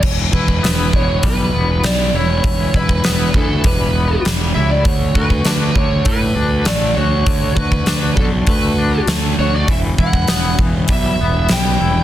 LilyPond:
<<
  \new Staff \with { instrumentName = "Lead electric guitar" } { \time 4/4 \key e \dorian \tempo 4 = 100 cis''8 b'4 cis''8 b'4 d''8 cis''8~ | cis''8 b'4 a'8 b'4 r8 e''16 d''16 | cis''8 b'4 cis''8 b'4 d''8 cis''8~ | cis''8 b'4 a'8 b'4 r8 cis''16 d''16 |
e''8 fis''4 r8 e''4 g''4 | }
  \new Staff \with { instrumentName = "Clean electric guitar" } { \time 4/4 \key e \dorian e8 e'8 b8 e8 g8 b8 g8 e'8 | e8 e'8 b8 e8 g8 b8 g8 e'8 | d8 fis'8 d'8 d8 a8 d'8 a8 fis'8 | d8 fis'8 d'8 d8 a8 d'8 a8 fis'8 |
e8 e'8 b8 e8 g8 b8 g8 e'8 | }
  \new Staff \with { instrumentName = "Picked electric bass" } { \clef bass \time 4/4 \key e \dorian e,,8 e,,8 e,,8 e,,8 b,,8 e,,8 b,,8 e,,8 | e,,8 e,,8 e,,8 d,8 e,,4 e,,8 cis,8 | d,8 d,8 d,8 d,8 a,8 d,8 a,,8 d,8 | d,8 d,8 d,8 b,,8 d,4 d,8 d,8 |
e,,8 e,,8 e,,8 e,,8 b,,8 e,,8 b,,8 e,,8 | }
  \new DrumStaff \with { instrumentName = "Drums" } \drummode { \time 4/4 <cymc bd>8 bd16 bd16 <hho sn>8 bd8 <hho bd>4 <hho sn>4 | <hho bd>8 bd16 bd16 <hho sn>8 bd8 <hho bd>4 <hho sn>4 | <hho bd>8 bd16 bd16 <hho sn>8 bd8 <hho bd>4 <hho sn>4 | <hho bd>8 bd16 bd16 <hho sn>8 bd8 <hho bd>4 <hho sn>4 |
<hho bd>8 bd16 bd16 <hho sn>8 bd8 <hho bd>4 <hho sn>4 | }
>>